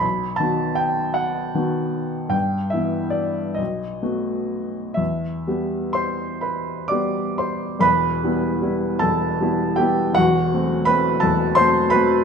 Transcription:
<<
  \new Staff \with { instrumentName = "Upright piano" } { \time 6/8 \key e \minor \tempo 4. = 51 b''8 a''8 g''8 fis''4. | g''8 e''8 d''8 dis''4. | e''4 <c'' c'''>8 <b' b''>8 <d'' d'''>8 <c'' c'''>8 | <b' b''>4. <a' a''>4 <g' g''>8 |
<fis' fis''>4 <b' b''>8 <a' a''>8 <c'' c'''>8 <b' b''>8 | }
  \new Staff \with { instrumentName = "Upright piano" } { \time 6/8 \key e \minor b,,8 <dis b fis'>4. <dis b fis'>4 | g,8 <e b e'>4 b,,8 <a b fis'>4 | e,8 <g b g'>4. <g b g'>4 | <e,, e,>8 <g b e'>8 <g b e'>8 <e,, e,>8 <g b e'>8 <g b e'>8 |
<e,, e,>8 <fis a c'>8 <fis a c'>8 <e,, e,>8 <fis a c'>8 <fis a c'>8 | }
>>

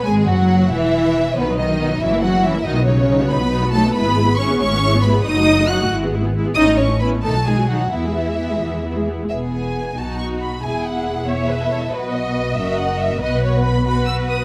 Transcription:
<<
  \new Staff \with { instrumentName = "Violin section" } { \time 6/8 \key e \major \tempo 4. = 92 gis''8 fis''4 e''4. | b'8 dis''4 e''8 fis''8 e''8 | dis''8 cis''4 b''4 a''8 | b''4 cis'''8 cis'''4 b''8 |
dis'''4 fis'''8 r4. | dis'''8 cis'''8 b''8 a''8 gis''8 fis''8 | e''2~ e''8 r8 | e''8 gis''4 a''8 cis'''8 b''8 |
gis''8 fis''4 e''4. | b'8 dis''4 e''8 fis''8 e''8 | dis''8 cis''8 b''8 b''8 e'''8 dis'''8 | }
  \new Staff \with { instrumentName = "Violin section" } { \time 6/8 \key e \major << { gis'8 fis'4 e'4. | b8 dis'4 e'8 fis'8 e'8 | dis'8 cis'4 b'4 a'8 | b'4 cis''8 cis''4 b'8 |
dis''4 fis''8 r4. | dis''8 cis''8 b'8 a'8 gis'8 fis'8 | e'2~ e'8 r8 | gis'4. fis'4. |
gis'4. gis'8. a'8. | b'4. ais'4. | b'4. b'4. | } \\ { r2. | r2. | r2. | r2. |
r2. | r2. | r2. | b4. dis'4. |
e'4. e'4. | fis'4. fis'4. | fis'4. fis'4. | } >> }
  \new Staff \with { instrumentName = "Viola section" } { \time 6/8 \key e \major gis8 fis4 e4. | <dis b>16 <fis dis'>16 <dis b>16 <fis dis'>16 <dis b>16 <fis dis'>16 <fis cis'>16 <ais e'>16 <fis cis'>16 <ais e'>16 <fis cis'>16 <ais e'>16 | <fis dis'>16 <b fis'>16 <fis dis'>16 <b fis'>16 <fis dis'>16 <b fis'>16 <fis dis'>16 <b fis'>16 <fis dis'>16 <b fis'>16 <fis dis'>16 <b fis'>16 | <gis e'>16 <b gis'>16 <gis e'>16 <b gis'>16 <gis e'>16 <b gis'>16 <gis e'>16 <b gis'>16 <gis e'>16 <b gis'>16 <gis e'>16 <b gis'>16 |
<fis dis'>16 <a fis'>16 <fis dis'>16 <a fis'>16 <fis dis'>16 <a fis'>16 <gis e'>16 <b gis'>16 <gis e'>16 <b gis'>16 <gis e'>16 <b gis'>16 | <cis' e'>16 <a cis'>16 <cis' e'>16 <a cis'>16 <cis' e'>16 <a cis'>16 <dis dis'>16 <fis fis'>16 <dis dis'>16 <fis fis'>16 <dis dis'>16 <fis fis'>16 | <b e'>16 <gis gis'>16 <b e'>16 <gis gis'>16 <b e'>16 <gis gis'>16 <b e'>16 <gis gis'>16 <b e'>16 <gis gis'>16 <b e'>16 <gis gis'>16 | r4. fis'4. |
gis'4. cis''8 b'8 cis''8 | dis''2. | b'4. b'4. | }
  \new Staff \with { instrumentName = "Cello section" } { \clef bass \time 6/8 \key e \major gis8 fis4 e4. | b,8 dis4 e8 fis8 e8 | dis8 cis4 b4 a8 | b4 cis'8 cis'4 b8 |
dis'4 fis'8 r4. | dis'8 cis'8 b8 a8 gis8 fis8 | e2~ e8 r8 | e,4. b,4. |
e,2. | b,4. fis,4. | b,2. | }
  \new Staff \with { instrumentName = "Double bass section" } { \clef bass \time 6/8 \key e \major gis,,8 fis,,4 e,,4. | b,,4. fis,,4. | b,,4. b,,4. | gis,,4. gis,,4. |
fis,,4. gis,,4. | a,,4. b,,4. | e,4. e,4. | e,,4. b,,4. |
e,,2. | b,,4. fis,,4. | b,,2. | }
>>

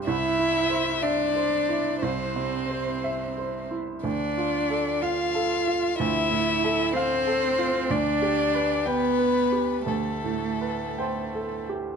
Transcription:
<<
  \new Staff \with { instrumentName = "Violin" } { \time 6/8 \key c \major \tempo 4. = 61 e''4. d''4. | c''2~ c''8 r8 | d''4. f''4. | e''4. c''4. |
d''4. b'4. | a'2~ a'8 r8 | }
  \new Staff \with { instrumentName = "Upright piano" } { \time 6/8 \key c \major << { r2. | r2. | r2. | r2. |
r2. | r4. c''4. | } \\ { c,8 e'8 c''8 e''8 c''8 e'8 | c,8 c8 c''8 e''8 c''8 e'8 | d,8 f'8 a'8 f''8 a'8 f'8 | d,8 a,8 a'8 f''8 a'8 f'8 |
d,8 g'8 b'8 g''8 b'8 g'8 | d,8 a,8 b'8 g''8 a'8 g'8 | } >> }
  \new Staff \with { instrumentName = "Cello" } { \time 6/8 \key c \major e'4. d'4. | c'2~ c'8 r8 | d'4. f'4. | e'4. c'4. |
d'4. b4. | a2~ a8 r8 | }
>>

